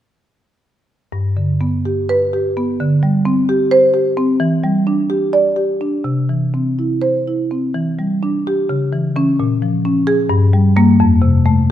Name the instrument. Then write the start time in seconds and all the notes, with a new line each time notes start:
marimba
1.12 G2
1.37 D3
1.61 B3
1.85 G4
2.09 B4
2.33 G4
2.57 B3
2.80 D3
3.03 G3
3.25 C4
3.49 G4
3.71 C5
3.94 G4
4.17 C4
4.40 E3
4.64 G3
4.87 D4
5.10 G4
5.33 D5
5.56 G4
5.81 D4
6.04 C3
6.29 E3
6.54 C4
6.79 E4
7.02 C5
7.28 E4
7.51 C4
7.74 E3
7.99 G3
8.23 D4
8.47 G4
8.69 C#3
8.93 E3
9.16 E3 C#4
9.40 A#2
9.62 F3
9.85 C#4
10.07 G#4
10.29 G2
10.53 G3
10.76 G3 A#3
11.00 F2
11.22 C3
11.46 A3